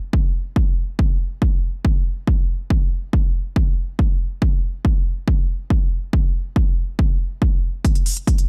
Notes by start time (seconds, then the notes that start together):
0.13 kick
0.56 kick
0.99 kick
1.42 kick
1.85 kick
2.27 kick
2.70 kick
3.13 kick
3.56 kick
3.99 kick
4.42 kick
4.85 kick
5.28 kick
5.70 kick
6.13 kick
6.56 kick
6.99 kick
7.42 kick
7.85 kick, closed hi-hat
7.95 closed hi-hat
8.06 open hi-hat
8.17 closed hi-hat
8.27 kick, closed hi-hat
8.38 closed hi-hat